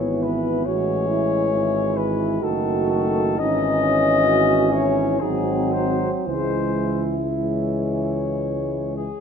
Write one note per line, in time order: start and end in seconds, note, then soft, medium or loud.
0.00 0.65 G#1 soft
0.00 0.66 E3 soft
0.00 0.65 B3 soft
0.00 0.66 E4 soft
0.00 0.24 C#5 medium
0.22 0.66 B4 medium
0.65 1.54 A1 soft
0.65 2.44 E3 soft
0.65 2.39 G#3 medium
0.65 1.09 F#4 medium
0.65 1.98 C#5 medium
1.08 1.52 E4 medium
1.52 2.41 G#1 medium
1.52 2.40 E4 medium
1.96 2.45 B4 medium
2.41 3.37 F#1 medium
2.41 3.39 D#3 soft
2.41 3.37 A3 medium
2.41 3.36 F#4 medium
2.41 2.89 A4 medium
2.90 3.40 A4 medium
3.37 5.18 G#1 medium
3.37 5.19 E3 medium
3.37 5.18 C#4 medium
3.37 3.82 D#4 medium
3.37 4.74 D#5 medium
3.82 4.27 C#4 medium
4.26 4.73 F#4 medium
4.70 5.20 E4 medium
4.70 5.22 C#5 medium
5.20 6.10 G#1 soft
5.20 6.28 F#3 medium
5.20 6.27 C4 medium
5.20 6.08 D#4 medium
5.20 5.74 G#4 medium
5.72 6.10 C5 medium
6.25 9.08 C#2 soft
6.25 7.19 E3 soft
6.25 7.21 G#3 soft
6.25 8.92 E4 soft
6.25 7.02 C5 medium
7.36 9.08 E3 soft
7.36 9.09 G#3 soft
7.36 8.93 C#5 medium
8.96 9.20 G#4 medium